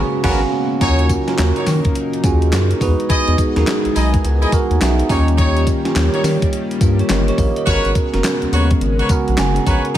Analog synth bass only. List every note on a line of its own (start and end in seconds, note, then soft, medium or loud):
0.24 0.45 G#1 medium
0.81 1.16 D#2 loud
1.39 1.52 D#2 loud
1.67 1.80 D#3 loud
2.24 2.54 D#2 medium
2.53 2.74 F#2 medium
2.81 2.95 E2 loud
3.28 3.35 E2 loud
3.56 3.64 D#2 medium
3.85 3.89 B1 medium
3.96 4.17 B1 medium
4.24 4.45 C#2 loud
4.71 4.78 D#2 loud
4.81 5.02 B1 medium
5.10 5.65 D#2 medium
5.96 6.09 D#2 medium
6.24 6.37 D#3 loud
6.81 7.02 G2 medium
7.10 7.31 G1 medium
7.38 7.52 A#1 medium
7.67 7.80 G#1 loud
7.85 7.93 G#1 loud
8.14 8.21 F#1 medium
8.42 8.46 D#2 soft
8.52 8.74 D#2 medium
8.81 9.02 G#1 medium
9.29 9.36 A#1 medium
9.39 9.60 F#1 medium
9.67 9.80 A#1 medium